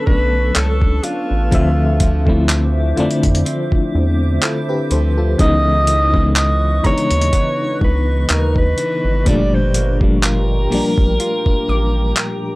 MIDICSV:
0, 0, Header, 1, 8, 480
1, 0, Start_track
1, 0, Tempo, 967742
1, 754, Time_signature, 4, 2, 24, 8
1, 6227, End_track
2, 0, Start_track
2, 0, Title_t, "Synth pluck"
2, 0, Program_c, 0, 84
2, 3392, Note_on_c, 0, 82, 70
2, 4814, Note_off_c, 0, 82, 0
2, 5800, Note_on_c, 0, 86, 69
2, 6227, Note_off_c, 0, 86, 0
2, 6227, End_track
3, 0, Start_track
3, 0, Title_t, "Ambient pad"
3, 0, Program_c, 1, 92
3, 0, Note_on_c, 1, 69, 72
3, 0, Note_on_c, 1, 71, 74
3, 0, Note_on_c, 1, 81, 70
3, 0, Note_on_c, 1, 85, 81
3, 736, Note_off_c, 1, 71, 0
3, 737, Note_off_c, 1, 69, 0
3, 737, Note_off_c, 1, 81, 0
3, 737, Note_off_c, 1, 85, 0
3, 755, Note_on_c, 1, 72, 71
3, 756, Note_on_c, 1, 76, 71
3, 756, Note_on_c, 1, 86, 86
3, 2656, Note_off_c, 1, 72, 0
3, 2656, Note_off_c, 1, 76, 0
3, 2656, Note_off_c, 1, 86, 0
3, 2673, Note_on_c, 1, 71, 77
3, 2673, Note_on_c, 1, 85, 86
3, 2674, Note_on_c, 1, 75, 69
3, 4575, Note_off_c, 1, 71, 0
3, 4575, Note_off_c, 1, 75, 0
3, 4575, Note_off_c, 1, 85, 0
3, 4591, Note_on_c, 1, 67, 74
3, 4591, Note_on_c, 1, 82, 83
3, 4592, Note_on_c, 1, 79, 74
3, 6227, Note_off_c, 1, 67, 0
3, 6227, Note_off_c, 1, 79, 0
3, 6227, Note_off_c, 1, 82, 0
3, 6227, End_track
4, 0, Start_track
4, 0, Title_t, "Alto saxophone"
4, 0, Program_c, 2, 65
4, 31, Note_on_c, 2, 71, 101
4, 274, Note_on_c, 2, 69, 91
4, 282, Note_off_c, 2, 71, 0
4, 513, Note_on_c, 2, 65, 85
4, 520, Note_off_c, 2, 69, 0
4, 1234, Note_off_c, 2, 65, 0
4, 2679, Note_on_c, 2, 75, 124
4, 3137, Note_off_c, 2, 75, 0
4, 3162, Note_on_c, 2, 75, 109
4, 3382, Note_off_c, 2, 75, 0
4, 3403, Note_on_c, 2, 73, 112
4, 3859, Note_off_c, 2, 73, 0
4, 3887, Note_on_c, 2, 71, 91
4, 4124, Note_on_c, 2, 70, 90
4, 4131, Note_off_c, 2, 71, 0
4, 4249, Note_off_c, 2, 70, 0
4, 4254, Note_on_c, 2, 71, 101
4, 4602, Note_on_c, 2, 74, 109
4, 4610, Note_off_c, 2, 71, 0
4, 4732, Note_on_c, 2, 72, 91
4, 4740, Note_off_c, 2, 74, 0
4, 4953, Note_off_c, 2, 72, 0
4, 5085, Note_on_c, 2, 70, 88
4, 6227, Note_off_c, 2, 70, 0
4, 6227, End_track
5, 0, Start_track
5, 0, Title_t, "Nylon-string guitar"
5, 0, Program_c, 3, 24
5, 0, Note_on_c, 3, 59, 90
5, 0, Note_on_c, 3, 69, 67
5, 0, Note_on_c, 3, 73, 70
5, 33, Note_on_c, 3, 62, 64
5, 267, Note_off_c, 3, 73, 0
5, 273, Note_on_c, 3, 73, 69
5, 511, Note_off_c, 3, 62, 0
5, 513, Note_on_c, 3, 62, 60
5, 751, Note_on_c, 3, 50, 88
5, 754, Note_off_c, 3, 59, 0
5, 806, Note_off_c, 3, 73, 0
5, 992, Note_on_c, 3, 53, 61
5, 1229, Note_off_c, 3, 62, 0
5, 1231, Note_on_c, 3, 60, 64
5, 1471, Note_off_c, 3, 69, 0
5, 1473, Note_on_c, 3, 64, 72
5, 1707, Note_off_c, 3, 60, 0
5, 1713, Note_on_c, 3, 60, 70
5, 1953, Note_off_c, 3, 53, 0
5, 2192, Note_off_c, 3, 64, 0
5, 2194, Note_on_c, 3, 64, 71
5, 2433, Note_on_c, 3, 53, 66
5, 2672, Note_off_c, 3, 50, 0
5, 2674, Note_off_c, 3, 64, 0
5, 2674, Note_on_c, 3, 49, 88
5, 2676, Note_on_c, 3, 63, 74
5, 2726, Note_off_c, 3, 53, 0
5, 2726, Note_off_c, 3, 60, 0
5, 2913, Note_on_c, 3, 52, 61
5, 3153, Note_on_c, 3, 59, 62
5, 3388, Note_off_c, 3, 63, 0
5, 3394, Note_on_c, 3, 63, 71
5, 3628, Note_off_c, 3, 59, 0
5, 3633, Note_on_c, 3, 59, 71
5, 3874, Note_off_c, 3, 52, 0
5, 4108, Note_off_c, 3, 63, 0
5, 4114, Note_on_c, 3, 63, 72
5, 4354, Note_on_c, 3, 52, 66
5, 4592, Note_off_c, 3, 52, 0
5, 4594, Note_off_c, 3, 49, 0
5, 4594, Note_on_c, 3, 55, 91
5, 4646, Note_off_c, 3, 59, 0
5, 4646, Note_off_c, 3, 63, 0
5, 4834, Note_on_c, 3, 58, 61
5, 5075, Note_on_c, 3, 65, 68
5, 5315, Note_on_c, 3, 67, 74
5, 5435, Note_off_c, 3, 67, 0
5, 5550, Note_off_c, 3, 65, 0
5, 5556, Note_on_c, 3, 65, 67
5, 5789, Note_off_c, 3, 58, 0
5, 5794, Note_on_c, 3, 58, 62
5, 6227, Note_off_c, 3, 55, 0
5, 6227, Note_off_c, 3, 58, 0
5, 6227, Note_off_c, 3, 65, 0
5, 6227, End_track
6, 0, Start_track
6, 0, Title_t, "FM electric piano"
6, 0, Program_c, 4, 5
6, 0, Control_c, 4, 64, 127
6, 0, Note_on_c, 4, 50, 72
6, 0, Note_on_c, 4, 54, 78
6, 0, Note_on_c, 4, 57, 77
6, 0, Note_on_c, 4, 59, 75
6, 0, Note_on_c, 4, 61, 82
6, 0, Note_on_c, 4, 62, 86
6, 244, Note_off_c, 4, 61, 0
6, 247, Note_off_c, 4, 54, 0
6, 249, Note_off_c, 4, 57, 0
6, 252, Note_off_c, 4, 59, 0
6, 254, Note_off_c, 4, 62, 0
6, 748, Note_off_c, 4, 50, 0
6, 748, Note_on_c, 4, 50, 97
6, 753, Note_on_c, 4, 53, 91
6, 758, Note_on_c, 4, 57, 91
6, 761, Control_c, 4, 64, 0
6, 762, Note_on_c, 4, 60, 91
6, 767, Note_on_c, 4, 76, 108
6, 835, Control_c, 4, 64, 127
6, 1012, Note_off_c, 4, 50, 0
6, 1015, Note_off_c, 4, 53, 0
6, 1017, Note_off_c, 4, 57, 0
6, 1019, Note_off_c, 4, 60, 0
6, 1021, Note_off_c, 4, 76, 0
6, 1118, Note_on_c, 4, 50, 86
6, 1123, Note_on_c, 4, 53, 81
6, 1128, Note_on_c, 4, 57, 83
6, 1132, Note_on_c, 4, 60, 81
6, 1138, Note_on_c, 4, 64, 98
6, 1379, Note_off_c, 4, 50, 0
6, 1381, Note_off_c, 4, 53, 0
6, 1384, Note_off_c, 4, 57, 0
6, 1386, Note_off_c, 4, 60, 0
6, 1388, Note_off_c, 4, 64, 0
6, 1469, Note_on_c, 4, 50, 97
6, 1474, Note_on_c, 4, 65, 90
6, 1479, Note_on_c, 4, 57, 89
6, 1483, Note_on_c, 4, 60, 87
6, 1489, Note_on_c, 4, 62, 111
6, 2165, Note_off_c, 4, 50, 0
6, 2168, Note_off_c, 4, 65, 0
6, 2170, Note_off_c, 4, 57, 0
6, 2172, Note_off_c, 4, 60, 0
6, 2175, Note_off_c, 4, 62, 0
6, 2196, Note_on_c, 4, 69, 69
6, 2199, Note_on_c, 4, 65, 56
6, 2318, Note_off_c, 4, 69, 0
6, 2320, Note_off_c, 4, 65, 0
6, 2326, Note_on_c, 4, 71, 72
6, 2329, Note_on_c, 4, 67, 62
6, 2430, Note_off_c, 4, 71, 0
6, 2432, Note_off_c, 4, 67, 0
6, 2439, Note_on_c, 4, 72, 73
6, 2442, Note_on_c, 4, 69, 58
6, 2560, Note_off_c, 4, 72, 0
6, 2561, Note_off_c, 4, 69, 0
6, 2567, Note_on_c, 4, 69, 69
6, 2570, Note_on_c, 4, 65, 58
6, 2669, Note_on_c, 4, 49, 101
6, 2675, Note_on_c, 4, 52, 94
6, 2678, Note_on_c, 4, 56, 96
6, 2681, Control_c, 4, 64, 0
6, 2684, Note_on_c, 4, 59, 89
6, 2689, Note_on_c, 4, 63, 114
6, 2753, Control_c, 4, 64, 127
6, 2794, Note_off_c, 4, 69, 0
6, 2795, Note_off_c, 4, 65, 0
6, 2933, Note_off_c, 4, 49, 0
6, 2935, Note_off_c, 4, 52, 0
6, 2937, Note_off_c, 4, 56, 0
6, 2940, Note_off_c, 4, 59, 0
6, 2942, Note_off_c, 4, 63, 0
6, 3039, Note_on_c, 4, 49, 75
6, 3043, Note_on_c, 4, 52, 68
6, 3048, Note_on_c, 4, 56, 72
6, 3052, Note_on_c, 4, 59, 67
6, 3057, Note_on_c, 4, 63, 81
6, 3299, Note_off_c, 4, 49, 0
6, 3301, Note_off_c, 4, 52, 0
6, 3304, Note_off_c, 4, 56, 0
6, 3306, Note_off_c, 4, 59, 0
6, 3308, Note_off_c, 4, 63, 0
6, 3388, Note_on_c, 4, 49, 82
6, 3392, Note_on_c, 4, 52, 76
6, 3398, Note_on_c, 4, 56, 72
6, 3402, Note_on_c, 4, 59, 75
6, 3409, Note_on_c, 4, 62, 70
6, 3436, Note_off_c, 4, 62, 0
6, 3439, Note_on_c, 4, 63, 94
6, 4085, Note_off_c, 4, 49, 0
6, 4087, Note_off_c, 4, 52, 0
6, 4090, Note_off_c, 4, 56, 0
6, 4092, Note_off_c, 4, 59, 0
6, 4110, Note_off_c, 4, 63, 0
6, 4589, Note_on_c, 4, 46, 100
6, 4594, Note_on_c, 4, 53, 93
6, 4600, Note_on_c, 4, 55, 89
6, 4602, Control_c, 4, 64, 0
6, 4604, Note_on_c, 4, 57, 90
6, 4608, Note_on_c, 4, 62, 105
6, 4698, Control_c, 4, 64, 127
6, 4852, Note_off_c, 4, 46, 0
6, 4855, Note_off_c, 4, 53, 0
6, 4858, Note_off_c, 4, 55, 0
6, 4860, Note_off_c, 4, 57, 0
6, 4862, Note_off_c, 4, 62, 0
6, 4959, Note_on_c, 4, 46, 73
6, 4964, Note_on_c, 4, 53, 72
6, 4970, Note_on_c, 4, 55, 67
6, 4974, Note_on_c, 4, 57, 67
6, 4979, Note_on_c, 4, 62, 83
6, 5219, Note_off_c, 4, 46, 0
6, 5222, Note_off_c, 4, 53, 0
6, 5225, Note_off_c, 4, 55, 0
6, 5227, Note_off_c, 4, 57, 0
6, 5229, Note_off_c, 4, 62, 0
6, 5309, Note_on_c, 4, 58, 79
6, 5314, Note_on_c, 4, 53, 75
6, 5319, Note_on_c, 4, 55, 72
6, 5329, Note_on_c, 4, 62, 92
6, 6005, Note_off_c, 4, 58, 0
6, 6008, Note_off_c, 4, 53, 0
6, 6010, Note_off_c, 4, 55, 0
6, 6015, Note_off_c, 4, 62, 0
6, 6227, End_track
7, 0, Start_track
7, 0, Title_t, "Analog synth bass"
7, 0, Program_c, 5, 38
7, 37, Note_on_c, 5, 35, 90
7, 256, Note_off_c, 5, 35, 0
7, 278, Note_on_c, 5, 37, 103
7, 496, Note_off_c, 5, 37, 0
7, 649, Note_on_c, 5, 33, 92
7, 747, Note_off_c, 5, 33, 0
7, 756, Note_on_c, 5, 38, 105
7, 1456, Note_off_c, 5, 38, 0
7, 1478, Note_on_c, 5, 41, 49
7, 1529, Note_off_c, 5, 41, 0
7, 1606, Note_on_c, 5, 41, 92
7, 1705, Note_off_c, 5, 41, 0
7, 1959, Note_on_c, 5, 40, 99
7, 2177, Note_off_c, 5, 40, 0
7, 2437, Note_on_c, 5, 38, 95
7, 2656, Note_off_c, 5, 38, 0
7, 2677, Note_on_c, 5, 37, 100
7, 3376, Note_off_c, 5, 37, 0
7, 3397, Note_on_c, 5, 39, 48
7, 3448, Note_off_c, 5, 39, 0
7, 3528, Note_on_c, 5, 39, 85
7, 3626, Note_off_c, 5, 39, 0
7, 3876, Note_on_c, 5, 37, 99
7, 4095, Note_off_c, 5, 37, 0
7, 4118, Note_on_c, 5, 39, 96
7, 4336, Note_off_c, 5, 39, 0
7, 4487, Note_on_c, 5, 32, 89
7, 4586, Note_off_c, 5, 32, 0
7, 4596, Note_on_c, 5, 31, 112
7, 5295, Note_off_c, 5, 31, 0
7, 5318, Note_on_c, 5, 34, 48
7, 5369, Note_off_c, 5, 34, 0
7, 5446, Note_on_c, 5, 34, 92
7, 5545, Note_off_c, 5, 34, 0
7, 5798, Note_on_c, 5, 33, 92
7, 6016, Note_off_c, 5, 33, 0
7, 6227, End_track
8, 0, Start_track
8, 0, Title_t, "Drums"
8, 35, Note_on_c, 9, 36, 108
8, 85, Note_off_c, 9, 36, 0
8, 275, Note_on_c, 9, 42, 72
8, 276, Note_on_c, 9, 39, 113
8, 324, Note_off_c, 9, 42, 0
8, 325, Note_off_c, 9, 39, 0
8, 404, Note_on_c, 9, 36, 98
8, 454, Note_off_c, 9, 36, 0
8, 514, Note_on_c, 9, 42, 61
8, 563, Note_off_c, 9, 42, 0
8, 755, Note_on_c, 9, 36, 121
8, 756, Note_on_c, 9, 42, 64
8, 804, Note_off_c, 9, 36, 0
8, 805, Note_off_c, 9, 42, 0
8, 992, Note_on_c, 9, 42, 82
8, 995, Note_on_c, 9, 36, 105
8, 1042, Note_off_c, 9, 42, 0
8, 1044, Note_off_c, 9, 36, 0
8, 1124, Note_on_c, 9, 36, 88
8, 1174, Note_off_c, 9, 36, 0
8, 1235, Note_on_c, 9, 39, 121
8, 1235, Note_on_c, 9, 42, 78
8, 1285, Note_off_c, 9, 39, 0
8, 1285, Note_off_c, 9, 42, 0
8, 1475, Note_on_c, 9, 42, 43
8, 1525, Note_off_c, 9, 42, 0
8, 1540, Note_on_c, 9, 42, 52
8, 1590, Note_off_c, 9, 42, 0
8, 1604, Note_on_c, 9, 36, 100
8, 1604, Note_on_c, 9, 42, 66
8, 1653, Note_off_c, 9, 42, 0
8, 1654, Note_off_c, 9, 36, 0
8, 1661, Note_on_c, 9, 42, 74
8, 1710, Note_off_c, 9, 42, 0
8, 1718, Note_on_c, 9, 42, 66
8, 1767, Note_off_c, 9, 42, 0
8, 1845, Note_on_c, 9, 36, 94
8, 1894, Note_off_c, 9, 36, 0
8, 2194, Note_on_c, 9, 42, 70
8, 2195, Note_on_c, 9, 39, 109
8, 2243, Note_off_c, 9, 42, 0
8, 2244, Note_off_c, 9, 39, 0
8, 2434, Note_on_c, 9, 42, 62
8, 2484, Note_off_c, 9, 42, 0
8, 2675, Note_on_c, 9, 36, 126
8, 2675, Note_on_c, 9, 42, 66
8, 2724, Note_off_c, 9, 42, 0
8, 2725, Note_off_c, 9, 36, 0
8, 2913, Note_on_c, 9, 42, 86
8, 2962, Note_off_c, 9, 42, 0
8, 3044, Note_on_c, 9, 36, 90
8, 3094, Note_off_c, 9, 36, 0
8, 3154, Note_on_c, 9, 39, 122
8, 3154, Note_on_c, 9, 42, 78
8, 3204, Note_off_c, 9, 39, 0
8, 3204, Note_off_c, 9, 42, 0
8, 3395, Note_on_c, 9, 36, 93
8, 3395, Note_on_c, 9, 42, 44
8, 3445, Note_off_c, 9, 36, 0
8, 3445, Note_off_c, 9, 42, 0
8, 3460, Note_on_c, 9, 42, 51
8, 3510, Note_off_c, 9, 42, 0
8, 3524, Note_on_c, 9, 42, 64
8, 3574, Note_off_c, 9, 42, 0
8, 3579, Note_on_c, 9, 42, 73
8, 3628, Note_off_c, 9, 42, 0
8, 3635, Note_on_c, 9, 36, 93
8, 3635, Note_on_c, 9, 42, 70
8, 3684, Note_off_c, 9, 36, 0
8, 3685, Note_off_c, 9, 42, 0
8, 3875, Note_on_c, 9, 36, 105
8, 3925, Note_off_c, 9, 36, 0
8, 4114, Note_on_c, 9, 42, 70
8, 4115, Note_on_c, 9, 39, 108
8, 4163, Note_off_c, 9, 42, 0
8, 4164, Note_off_c, 9, 39, 0
8, 4245, Note_on_c, 9, 36, 101
8, 4294, Note_off_c, 9, 36, 0
8, 4353, Note_on_c, 9, 42, 63
8, 4403, Note_off_c, 9, 42, 0
8, 4594, Note_on_c, 9, 42, 65
8, 4595, Note_on_c, 9, 36, 127
8, 4643, Note_off_c, 9, 42, 0
8, 4644, Note_off_c, 9, 36, 0
8, 4833, Note_on_c, 9, 42, 89
8, 4883, Note_off_c, 9, 42, 0
8, 4965, Note_on_c, 9, 36, 96
8, 5014, Note_off_c, 9, 36, 0
8, 5075, Note_on_c, 9, 39, 121
8, 5075, Note_on_c, 9, 42, 81
8, 5125, Note_off_c, 9, 39, 0
8, 5125, Note_off_c, 9, 42, 0
8, 5318, Note_on_c, 9, 46, 51
8, 5367, Note_off_c, 9, 46, 0
8, 5444, Note_on_c, 9, 36, 98
8, 5494, Note_off_c, 9, 36, 0
8, 5554, Note_on_c, 9, 42, 66
8, 5604, Note_off_c, 9, 42, 0
8, 5684, Note_on_c, 9, 36, 100
8, 5734, Note_off_c, 9, 36, 0
8, 6033, Note_on_c, 9, 42, 69
8, 6034, Note_on_c, 9, 39, 104
8, 6083, Note_off_c, 9, 42, 0
8, 6084, Note_off_c, 9, 39, 0
8, 6227, End_track
0, 0, End_of_file